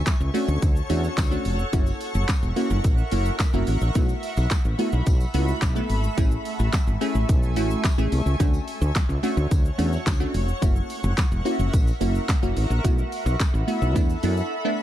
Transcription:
Already playing: A3 C#4 D4 F#4 A4 C#5 F#5 C#6
0.07 kick, snare, clap, closed hi-hat, tambourine, shaker
0.20 C#2, shaker
0.34 A3 C#4 D4 F#4, open hi-hat, tambourine, shaker
0.48 D2, shaker
0.62 D2, kick, closed hi-hat, tambourine, shaker
0.76 shaker
0.90 E2 A3 C#4 D4 F#4, open hi-hat, tambourine, shaker
1.04 tambourine, shaker
1.18 D2, kick, snare, clap, closed hi-hat, tambourine, shaker
1.31 A3 C#4 D4 F#4, shaker
1.45 F1, open hi-hat, tambourine, shaker
1.59 shaker
1.73 F#1 A#3 C#4 E4 F#4 A#4 E5, kick, closed hi-hat, tambourine, shaker
1.87 tambourine, shaker
2.01 open hi-hat, tambourine, shaker
2.15 F#1, shaker
2.28 kick, snare, clap, closed hi-hat, tambourine, shaker
2.43 E1, shaker
2.56 A#3 C#4 E4 F#4, open hi-hat, tambourine, shaker
2.70 F#1, shaker
2.84 A#1, kick, closed hi-hat, tambourine, shaker
2.98 shaker
3.11 F#1 A#3 C#4 E4 F#4, open hi-hat, tambourine, shaker
3.26 shaker
3.40 kick, snare, clap, closed hi-hat, tambourine, shaker
3.53 F#1 A#3 C#4 E4 F#4, shaker
3.67 A1, open hi-hat, tambourine, shaker
3.81 A#1, shaker
3.95 B1 A3 B3 E4 F#4 B5, kick, closed hi-hat, tambourine, shaker
4.09 tambourine, shaker
4.23 open hi-hat, tambourine, shaker
4.37 B1, tambourine, shaker
4.51 kick, snare, clap, closed hi-hat, tambourine, shaker
4.65 A1, shaker
4.79 A3 B3 E4 F#4, open hi-hat, tambourine, shaker
4.92 B1, shaker
5.06 B1, kick, closed hi-hat, tambourine, shaker
5.20 tambourine, shaker
5.34 C#2 A3 B3 E4 F#4, open hi-hat, tambourine, shaker
5.48 shaker
5.62 B1, kick, snare, clap, closed hi-hat, tambourine, shaker
5.76 A3 B3 E4 A4, shaker
5.90 G#1, open hi-hat, tambourine, shaker
6.04 shaker
6.17 A1 A3 C#4 E4 G#4 G#5 C#6, kick, closed hi-hat, tambourine, shaker
6.31 shaker
6.45 open hi-hat, tambourine, shaker
6.59 A1, tambourine, shaker
6.73 kick, snare, clap, closed hi-hat, tambourine, shaker
6.87 G#1, shaker
7.01 A3 C#4 E4 G#4, open hi-hat, tambourine, shaker
7.15 A1, shaker
7.29 B1, kick, closed hi-hat, tambourine, shaker
7.43 shaker
7.56 A1 A3 C#4 E4 F#4, open hi-hat, tambourine, shaker
7.71 shaker
7.84 kick, snare, clap, closed hi-hat, tambourine, shaker
7.98 A1 A3 C#4 E4 G#4, shaker
8.12 C2, open hi-hat, tambourine, shaker
8.26 C#2, shaker
8.40 D2 A3 C#4 D4 F#4 C#5 F#5 C#6, kick, closed hi-hat, tambourine, shaker
8.54 tambourine, shaker
8.68 open hi-hat, tambourine, shaker
8.81 D2, shaker
8.95 kick, snare, clap, closed hi-hat, tambourine, shaker
9.09 C#2, shaker
9.23 A3 C#4 D4 F#4, open hi-hat, tambourine, shaker
9.37 D2, shaker
9.51 D2, kick, closed hi-hat, tambourine, shaker
9.65 shaker
9.78 E2 A3 C#4 D4 F#4, open hi-hat, tambourine, shaker
9.93 tambourine, shaker
10.07 D2, kick, snare, clap, closed hi-hat, tambourine, shaker
10.20 A3 C#4 D4 F#4, shaker
10.34 F1, open hi-hat, tambourine, shaker
10.48 shaker
10.62 F#1 A#3 C#4 E4 F#4 A#4 E5, kick, closed hi-hat, tambourine, shaker
10.76 shaker
10.90 open hi-hat, tambourine, shaker
11.04 F#1, shaker
11.18 kick, snare, clap, closed hi-hat, tambourine, shaker
11.32 E1, shaker
11.45 A#3 C#4 E4 F#4, open hi-hat, tambourine, shaker
11.59 F#1, shaker
11.73 A#1, kick, closed hi-hat, tambourine, shaker
11.87 tambourine, shaker
12.01 F#1 A#3 C#4 E4 F#4, open hi-hat, tambourine, shaker
12.15 tambourine, shaker
12.29 kick, snare, clap, closed hi-hat, tambourine, shaker
12.42 F#1 A#3 C#4 E4 F#4, shaker
12.57 A1, open hi-hat, tambourine, shaker
12.70 A#1, shaker
12.84 B1 A3 B3 E4 F#4 A4 E5, kick, closed hi-hat, tambourine, shaker
12.98 shaker
13.12 open hi-hat, tambourine, shaker
13.26 B1, tambourine, shaker
13.40 kick, snare, clap, closed hi-hat, tambourine, shaker
13.54 A1, shaker
13.67 A3 B3 E4 F#4, open hi-hat, tambourine, shaker
13.82 B1, shaker
13.95 E2 A3 B3 D4 E4, kick, closed hi-hat, tambourine, shaker
14.09 tambourine, shaker
14.23 F#2 A3 B3 D4 E4, open hi-hat, tambourine, shaker
14.37 tambourine, shaker
14.65 A3 B3 D4 E4

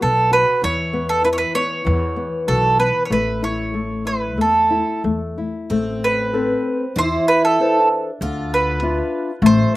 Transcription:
0.01 B1 B3 A4
0.31 F#4 B4
0.62 E2 E3 C#5
0.93 B3
1.09 A4
1.24 E4 B4
1.33 C#5
1.38 B4
1.55 B3 C#5
1.85 E2 E3
2.16 B3
2.48 B1 F#4 A4
2.79 B3 B4
3.05 C#5
3.10 A1 A3 B4
3.42 E4 C#5
3.74 A3
4.05 E4 B4
4.37 E2 A3 A4
4.70 E4
5.04 E2 A3
5.38 E4
5.70 A1 A3 C4
6.04 B4
6.33 C4 A4 B4
6.96 E2 E3 E4 C5
7.28 B4
7.45 A4
7.60 A4 B4 C5
7.83 D4
8.21 D2 D3 F4
8.54 B4
8.82 D4 F4 E5
9.42 A1 A3
9.46 C5

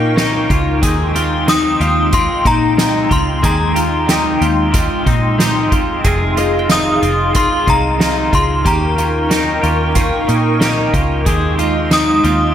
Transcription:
Already playing: A#2 A#3 C#4 D#4 G4 A#4 G5 C#6
0.16 D#3 A#3 C#4 D#4 G4, snare, closed hi-hat
0.49 C#2 C#4 F4 G4, kick, closed hi-hat
0.54 A#3
0.82 D#2 D#3 G#3 C4 G4 G#4 G5 C6, kick, closed hi-hat
1.14 C4 F4 G4, closed hi-hat
1.19 G#3
1.47 D#3 G#3 C4 D#4 G4 D#6, snare, closed hi-hat
1.79 D#2 C4 F4 G4, closed hi-hat
1.84 G#3
2.12 D#3 G#3 C4 F4 C6, kick, closed hi-hat
2.17 G4
2.45 A#2 C4 D#4 G4 A#5, kick, closed hi-hat
2.49 G#3
2.77 D#3 G#3 C4 D#4 G4, snare, closed hi-hat
3.09 C#2 C4 F4 G4 C6, kick, closed hi-hat
3.14 G#3
3.42 D#2 D#3 G#3 C4 G4 G#4 A#5, kick, closed hi-hat
3.74 C4 F4 G4, closed hi-hat
3.79 G#3
4.07 D#3 G#3 C4 D#4 G4, snare, closed hi-hat
4.40 D#2 C4 F4 G4, closed hi-hat
4.45 G#3
4.72 D#3 G#3 C4 F4, kick, closed hi-hat
4.77 G4
5.05 A#2 C4 D#4 G4, kick, closed hi-hat
5.10 G#3
5.38 D#3 G#3 C4 D#4 G4, snare, closed hi-hat
5.70 D#2 C4 F4 G4, kick, closed hi-hat
5.75 G#3
6.04 F1 F2 C3 D#3 G#3 C4 D#4 F4 G#4 F5, kick, closed hi-hat
6.36 G#3 C4 F4 D#5, closed hi-hat
6.59 G5
6.68 F2 C3 D#3 G#3 C4 D#4 F4 D#6, snare, closed hi-hat
7.01 F1 G#3 C4 F4, closed hi-hat
7.06 D#3
7.33 D#3 G#3 C4 F4 C6, kick, closed hi-hat
7.38 F4
7.66 C2 G#3 C4 D#4 F4 A#5, kick, closed hi-hat
7.71 D#3
7.99 F2 C3 D#3 G#3 C4 D#4 F4, snare, closed hi-hat
8.31 C#2 G#3 C4 F4 C6, kick, closed hi-hat
8.36 D#3
8.64 D#2 D#3 A#3 C#4 G4 A#4 G5 A#5 C#6, kick, closed hi-hat
8.96 C#4 F4 G4, closed hi-hat
9.01 A#3
9.29 D#3 A#3 C#4 D#4 G4, snare, closed hi-hat
9.61 D#2 C#4 F4 G4, closed hi-hat
9.66 A#3
9.94 D#3 A#3 C#4 F4, kick, closed hi-hat
9.99 G4
10.27 A#2 C#4 D#4 G4, closed hi-hat
10.32 A#3
10.60 D#3 A#3 C#4 D#4 G4, snare, closed hi-hat
10.93 C#2 C#4 F4 G4, kick, closed hi-hat
10.97 A#3
11.25 D#2 D#3 G#3 C4 G4 G#4 D#5 C6, kick, closed hi-hat
11.57 C4 F4 G4, closed hi-hat
11.63 G#3
11.91 D#3 G#3 C4 D#4 G4 D#6, snare, closed hi-hat
12.23 D#2 C4 F4 G4, closed hi-hat
12.28 G#3

